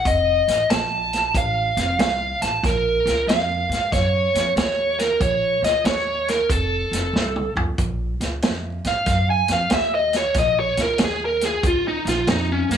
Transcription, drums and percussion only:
0.05 kick, closed hi-hat
0.48 snare, closed hi-hat
0.70 snare, closed hi-hat
1.13 snare, closed hi-hat
1.35 kick, closed hi-hat
1.77 snare, closed hi-hat
1.99 snare, closed hi-hat
2.42 snare, closed hi-hat
2.64 kick, snare, closed hi-hat
3.07 snare, closed hi-hat
3.29 snare, closed hi-hat
3.72 snare, closed hi-hat
3.92 kick, snare, closed hi-hat
4.35 snare, closed hi-hat
4.57 snare, closed hi-hat
4.99 snare, closed hi-hat
5.21 kick, closed hi-hat
5.64 snare, closed hi-hat
5.85 snare, closed hi-hat
6.28 snare, closed hi-hat
6.50 kick, closed hi-hat
6.93 snare, closed hi-hat
7.16 snare
7.36 mid tom
7.57 floor tom
7.78 kick, closed hi-hat
8.21 snare, closed hi-hat
8.42 snare, closed hi-hat
8.84 snare, closed hi-hat
9.06 kick, snare, closed hi-hat
9.48 snare, closed hi-hat
9.70 snare, closed hi-hat
10.13 snare, closed hi-hat
10.34 kick, snare, closed hi-hat
10.77 snare, closed hi-hat
10.98 snare, closed hi-hat
11.41 snare, closed hi-hat
11.63 kick, closed hi-hat
12.07 snare, closed hi-hat
12.27 snare, closed hi-hat
12.71 snare, closed hi-hat

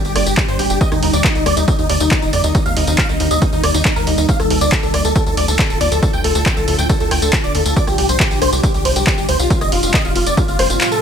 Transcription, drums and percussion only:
0.05 closed hi-hat, tambourine
0.16 cross-stick, open hi-hat, ride
0.27 closed hi-hat, tambourine
0.37 kick, clap, closed hi-hat, tambourine
0.48 closed hi-hat, tambourine
0.59 open hi-hat, ride
0.70 closed hi-hat, tambourine
0.81 kick, closed hi-hat, tambourine
0.92 cross-stick, closed hi-hat, tambourine
1.03 open hi-hat, ride
1.13 closed hi-hat, tambourine
1.24 kick, clap, closed hi-hat, tambourine
1.35 closed hi-hat, tambourine
1.46 cross-stick, open hi-hat, ride
1.57 closed hi-hat, tambourine
1.68 kick, closed hi-hat, tambourine
1.79 closed hi-hat, tambourine
1.90 open hi-hat, ride
2.00 closed hi-hat, tambourine
2.11 kick, clap, closed hi-hat, tambourine
2.22 closed hi-hat, tambourine
2.33 open hi-hat, ride
2.44 closed hi-hat, tambourine
2.55 kick, closed hi-hat, tambourine
2.66 closed hi-hat, tambourine
2.77 open hi-hat, ride
2.87 closed hi-hat, tambourine
2.98 kick, clap, closed hi-hat, tambourine
3.09 closed hi-hat, tambourine
3.20 open hi-hat, ride
3.31 closed hi-hat, tambourine
3.42 kick, closed hi-hat, tambourine
3.53 closed hi-hat, tambourine
3.64 cross-stick, open hi-hat, ride
3.74 closed hi-hat, tambourine
3.85 kick, clap, closed hi-hat, tambourine
3.96 closed hi-hat, tambourine
4.07 open hi-hat, ride
4.18 closed hi-hat, tambourine
4.29 kick, closed hi-hat, tambourine
4.40 cross-stick, closed hi-hat, tambourine
4.50 open hi-hat, ride
4.61 closed hi-hat, tambourine
4.72 kick, clap, closed hi-hat, tambourine
4.83 closed hi-hat, tambourine
4.94 cross-stick, open hi-hat, ride
5.05 closed hi-hat, tambourine
5.16 kick, closed hi-hat, tambourine
5.27 closed hi-hat, tambourine
5.37 open hi-hat, ride
5.48 closed hi-hat, tambourine
5.59 kick, clap, closed hi-hat, tambourine
5.70 closed hi-hat, tambourine
5.81 open hi-hat, ride
5.92 closed hi-hat, tambourine
6.03 kick, closed hi-hat, tambourine
6.13 closed hi-hat, tambourine
6.24 open hi-hat, ride
6.35 closed hi-hat, tambourine
6.46 kick, clap, closed hi-hat, tambourine
6.57 closed hi-hat, tambourine
6.68 open hi-hat, ride
6.79 closed hi-hat, tambourine
6.89 kick, closed hi-hat, tambourine
7.00 closed hi-hat, tambourine
7.11 cross-stick, open hi-hat, ride
7.22 closed hi-hat, tambourine
7.33 kick, clap, closed hi-hat, tambourine
7.44 closed hi-hat, tambourine
7.55 open hi-hat, ride
7.66 closed hi-hat, tambourine
7.76 kick, closed hi-hat, tambourine
7.87 cross-stick, closed hi-hat, tambourine
7.98 open hi-hat, ride
8.09 closed hi-hat, tambourine
8.20 kick, clap, closed hi-hat, tambourine
8.31 closed hi-hat, tambourine
8.42 cross-stick, open hi-hat, ride
8.53 closed hi-hat, tambourine
8.63 kick, closed hi-hat, tambourine
8.74 closed hi-hat, tambourine
8.85 open hi-hat, ride
8.96 closed hi-hat, tambourine
9.07 kick, clap, closed hi-hat, tambourine
9.18 closed hi-hat, tambourine
9.29 open hi-hat, ride
9.40 closed hi-hat, tambourine
9.50 kick, closed hi-hat, tambourine
9.61 cross-stick, closed hi-hat, tambourine
9.72 open hi-hat, ride
9.83 closed hi-hat, tambourine
9.94 kick, clap, closed hi-hat, tambourine
10.05 closed hi-hat, tambourine
10.16 open hi-hat, ride
10.26 closed hi-hat, tambourine
10.37 kick, closed hi-hat, tambourine
10.48 closed hi-hat, tambourine
10.59 cross-stick, open hi-hat, ride
10.70 closed hi-hat, tambourine
10.81 clap, closed hi-hat, tambourine
10.92 closed hi-hat, tambourine

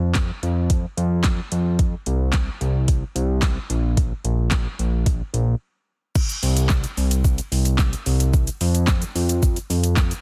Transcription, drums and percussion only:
0.15 kick, snare, clap, closed hi-hat
0.43 closed hi-hat
0.70 kick, closed hi-hat
0.98 closed hi-hat
1.24 kick, snare, clap, closed hi-hat
1.52 closed hi-hat
1.79 kick, closed hi-hat
2.06 closed hi-hat
2.33 kick, snare, clap, closed hi-hat
2.61 closed hi-hat
2.88 kick, closed hi-hat
3.16 closed hi-hat
3.42 kick, snare, clap, closed hi-hat
3.70 closed hi-hat
3.97 kick, closed hi-hat
4.25 closed hi-hat
4.51 kick, snare, clap, closed hi-hat
4.79 closed hi-hat
5.06 kick, closed hi-hat
5.34 closed hi-hat
6.15 kick, crash, shaker
6.29 closed hi-hat, shaker
6.43 open hi-hat, shaker
6.57 closed hi-hat, shaker
6.69 kick, snare, clap, shaker
6.84 closed hi-hat, shaker
6.97 open hi-hat, shaker
7.11 closed hi-hat, shaker
7.24 kick, shaker
7.38 closed hi-hat, shaker
7.52 open hi-hat, shaker
7.65 closed hi-hat, shaker
7.78 kick, snare, clap, shaker
7.93 closed hi-hat, shaker
8.06 open hi-hat, shaker
8.20 closed hi-hat, shaker
8.33 kick, shaker
8.47 closed hi-hat, shaker
8.61 open hi-hat, shaker
8.75 closed hi-hat, shaker
8.87 kick, snare, clap, shaker
9.02 closed hi-hat, shaker
9.16 open hi-hat, shaker
9.29 closed hi-hat, shaker
9.42 kick, shaker
9.56 closed hi-hat, shaker
9.70 open hi-hat, shaker
9.84 closed hi-hat, shaker
9.97 kick, snare, clap, shaker
10.11 closed hi-hat, shaker

